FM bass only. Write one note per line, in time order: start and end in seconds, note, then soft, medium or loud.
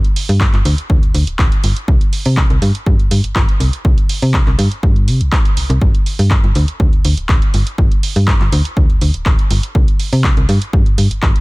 0.29 0.47 G2 medium
0.54 0.62 G1 medium
0.65 0.75 D2 loud
0.90 0.99 D2 medium
1.03 1.12 D2 soft
1.15 1.24 D2 medium
1.27 1.37 D1 soft
1.39 1.49 D1 loud
1.64 1.73 G1 medium
1.88 1.98 C2 medium
2.26 2.44 C3 medium
2.50 2.59 C2 medium
2.62 2.72 G2 loud
2.86 2.96 G2 medium
3.00 3.09 G2 soft
3.11 3.21 G2 medium
3.24 3.33 G1 soft
3.36 3.45 G1 loud
3.60 3.70 C2 medium
3.85 3.95 C2 medium
4.22 4.41 C3 medium
4.47 4.56 C2 medium
4.59 4.68 G2 loud
4.83 5.09 G2 medium
5.08 5.22 C3 medium
5.21 5.30 C2 medium
5.57 5.67 C2 soft
5.70 5.79 C2 medium
5.81 5.91 G1 medium
6.19 6.37 G2 medium
6.44 6.53 G1 medium
6.56 6.65 D2 loud
6.80 6.90 D2 medium
6.93 7.02 D2 soft
7.05 7.14 D2 medium
7.18 7.27 D1 soft
7.29 7.39 D1 loud
7.54 7.64 G1 medium
7.78 7.88 G1 medium
8.16 8.34 G2 medium
8.41 8.49 G1 medium
8.52 8.62 D2 loud
8.77 8.86 D2 medium
8.90 8.99 D2 soft
9.02 9.11 D2 medium
9.15 9.24 D1 soft
9.26 9.36 D1 loud
9.51 9.60 G1 medium
9.75 9.85 C2 loud
10.13 10.31 C3 medium
10.37 10.46 C2 medium
10.49 10.59 G2 loud
10.73 10.83 G2 medium
10.86 10.96 G2 soft
10.98 11.08 G2 medium
11.11 11.20 G1 soft
11.23 11.32 G1 loud